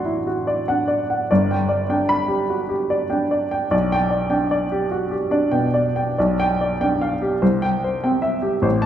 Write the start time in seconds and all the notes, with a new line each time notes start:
Already playing: A1 D4 F#4 D5 F#5 C6
0.05 E4
0.27 F#4
0.47 D5
0.68 D4 F#5
0.88 D5
1.10 F#5
1.31 G1 D5
1.51 G5
1.69 D5
1.89 D4 G5
2.09 B5
2.28 G4
2.50 F#4
2.69 G4
2.90 D5
3.10 D4 G5
3.31 D5
3.51 G5
3.71 B1 D5
3.92 G5
4.11 D5
4.30 D4 G5
4.51 D5
4.72 G4
4.91 F#4
5.11 G4
5.31 D4 D5
5.51 B2 G5
5.74 D5
5.96 G5
6.18 B1 D5
6.40 G5
6.61 D5
6.81 D4 G5
7.01 F5
7.22 G4
7.42 C2 C5
7.62 G5
7.84 C5
8.04 C4 G5
8.22 E5
8.42 G4
8.62 A1 C5
8.82 A5